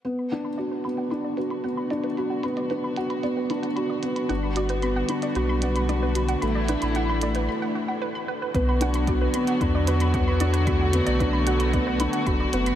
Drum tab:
HH |x-xxx-xxx-xxx-xx|x-xxx-xxx-xxx-xx|x-xxx-xxx-xxx-xx|x-xxx-xx--------|
BD |----------------|----------------|----------------|----------------|

HH |x-xxx-xxx-xxx-xx|x-xxx-xxx-xxx-xx|
BD |o---o---o---o---|o---o---o---o---|